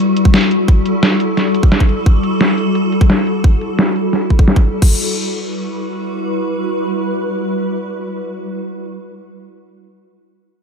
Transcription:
Already playing: G3 E4 F#4 A4
0.17 closed hi-hat
0.25 kick
0.34 snare, closed hi-hat
0.51 closed hi-hat
0.68 kick, closed hi-hat
0.86 closed hi-hat
1.03 snare, closed hi-hat
1.20 closed hi-hat
1.37 snare, closed hi-hat
1.55 closed hi-hat
1.63 kick
1.72 snare, closed hi-hat
1.80 kick
1.89 closed hi-hat
2.06 kick, closed hi-hat
2.23 closed hi-hat
2.41 snare, closed hi-hat
2.58 closed hi-hat
2.75 closed hi-hat
2.92 closed hi-hat
3.01 kick
3.10 snare, closed hi-hat
3.27 closed hi-hat
3.44 kick, closed hi-hat
3.61 closed hi-hat
3.79 snare, closed hi-hat
3.96 closed hi-hat
4.13 snare, closed hi-hat
4.30 kick, closed hi-hat
4.39 kick
4.48 snare, closed hi-hat
4.56 kick
4.65 closed hi-hat
4.82 G3 E4 F#4 B4, kick, crash

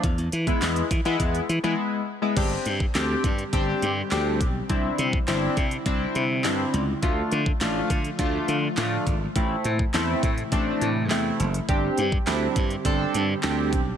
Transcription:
0.04 E2, kick, closed hi-hat
0.18 E2, closed hi-hat
0.32 E3, closed hi-hat
0.47 G#3 B3 E4, kick, closed hi-hat
0.62 E2, snare, clap, closed hi-hat
0.76 closed hi-hat
0.91 E3, kick, closed hi-hat
1.05 E3 G#3 B3 E4, closed hi-hat
1.20 E2, kick, closed hi-hat
1.35 closed hi-hat
1.49 E3, closed hi-hat
1.63 E3 G#3 B3 E4, closed hi-hat
2.22 G#3 B3 E4
2.36 G1 D3 G3 C4 D4 G4, kick, closed hi-hat, crash
2.65 G2, closed hi-hat
2.80 kick
2.95 D2 C4 D4 G4, snare, clap, closed hi-hat
3.24 G2, kick, closed hi-hat
3.38 closed hi-hat
3.53 G1 C4 D4 G4, kick, closed hi-hat
3.82 G2, closed hi-hat
4.11 D2 C4 D4 G4, snare, clap, closed hi-hat
4.41 B1, kick, closed hi-hat
4.69 C2 C4 D4 E4, kick, closed hi-hat
4.98 C3, closed hi-hat
5.13 kick
5.28 G1 C4 D4 E4, snare, clap, closed hi-hat
5.57 C3, kick, closed hi-hat
5.71 closed hi-hat
5.86 C2 C4 D4 E4, kick, closed hi-hat
6.15 C3, closed hi-hat
6.44 G2 C4 D4 E4, snare, clap, closed hi-hat
6.74 C#2, closed hi-hat
7.02 D2 F3 A3 D4 F4, kick, closed hi-hat
7.32 D3, closed hi-hat
7.46 kick
7.61 A1 A3 D4 F4, snare, clap, closed hi-hat
7.90 D3, kick, closed hi-hat
8.04 closed hi-hat
8.19 D2 A3 D4 F4, kick, closed hi-hat
8.48 D3, closed hi-hat
8.77 A2 A3 D4 F4, snare, clap, closed hi-hat
9.07 G#1, kick, closed hi-hat
9.35 A1 C3 E3 A3 C4 E4, kick, closed hi-hat
9.64 A2, closed hi-hat
9.79 kick
9.94 E2 A3 C4 E4, snare, clap, closed hi-hat
10.23 A2, kick, closed hi-hat
10.38 closed hi-hat
10.52 A1 A3 C4 D4, kick, closed hi-hat
10.81 A2, closed hi-hat
11.10 E2 A3 C4 E4, snare, clap, closed hi-hat
11.40 F#1, closed hi-hat
11.54 closed hi-hat
11.68 G1 D3 G3 C4 D4 G4, kick, closed hi-hat
11.98 G2, closed hi-hat
12.12 kick
12.27 D2 C4 D4 E4, snare, clap, closed hi-hat
12.56 G2, kick, closed hi-hat
12.70 closed hi-hat
12.85 G1 C4 D4 A4, kick, closed hi-hat
13.14 G2, closed hi-hat
13.43 D2 C4 D4 G4, snare, clap, closed hi-hat
13.73 B1, kick, closed hi-hat

